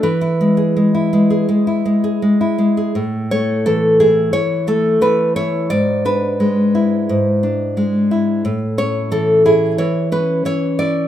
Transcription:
\new Staff \with { instrumentName = "Nylon-string guitar" } { \time 4/4 \key a \major \tempo 4 = 88 << { b'2. r4 | r8 cis''8 a'8 gis'8 cis''8 a'8 b'8 cis''8 | d''8 b'2.~ b'8 | r8 cis''8 a'8 gis'8 cis''8 b'8 cis''8 d''8 | } \\ { e16 e'16 gis16 gis'16 gis16 e'16 gis16 gis'16 gis16 e'16 gis16 gis'16 gis16 e'16 gis16 gis'16 | a,8 a8 e8 e'8 e8 a8 e8 e'8 | gis,8 d'8 gis8 e'8 gis,8 d'8 gis8 e'8 | a,8 cis'8 e8 e'8 e8 cis'8 e8 e'8 | } >> }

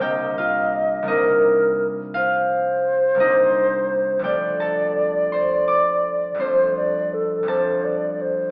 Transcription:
<<
  \new Staff \with { instrumentName = "Alto flute" } { \time 12/8 \key c \dorian \tempo 4. = 56 ees''4. bes'4 r8 c''2. | d''2. c''8 d''8 a'8 c''8 d''8 c''8 | }
  \new Staff \with { instrumentName = "Harp" } { \time 12/8 \key c \dorian <g' bes' g'' bes''>8 <f' f''>4 <ees' ees''>4. <f' f''>4. <ees' ees''>4. | <g' g''>8 <a' a''>4 <c'' c'''>8 <d'' d'''>4 <c'' c'''>4. <a' a''>4. | }
  \new Staff \with { instrumentName = "Harp" } { \time 12/8 \key c \dorian <c, g bes c' d'>4. <c, g bes c' d'>2. <c, g bes c' d'>4. | <f, g a c' d'>2. <f, g a c' d'>4. <f, g a c' d'>4. | }
>>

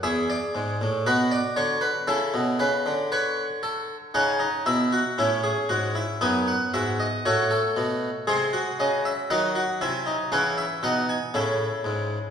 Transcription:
<<
  \new Staff \with { instrumentName = "Harpsichord" } { \time 4/4 \key a \major \tempo 4 = 58 << { e''16 d''8. b'16 d''16 cis''16 b'16 a'8 b'8 cis''4 | \key cis \minor fis''8 e''4. gis''16 fis''16 e''16 dis''16 cis''4 | bis'8 dis''16 e''16 fis''8 gis''8 fis''16 e''16 fis''16 gis''4~ gis''16 | } \\ { gis'4 fis'4 e'4 b'8 a'8 | cis'16 dis'16 e'16 fis'16 e'16 gis'16 fis'16 e'16 dis'8 fis'8 fis'16 a'8. | gis'16 fis'8. dis'16 fis'16 e'16 dis'16 cis'8 dis'8 e'4 | } >> }
  \new Staff \with { instrumentName = "Harpsichord" } { \clef bass \time 4/4 \key a \major << { r1 | \key cis \minor dis'4 cis'4 b4 a4 | gis4 fis4 e4 cis4 | } \\ { e,8 gis,16 a,16 b,8 d8 cis16 b,16 cis16 d4~ d16 | cis8 b,8 a,8 gis,8 fis,8 gis,8 a,8 b,8 | bis,8 cis8 dis8 bis,8 cis8 b,8 a,8 gis,8 | } >> }
>>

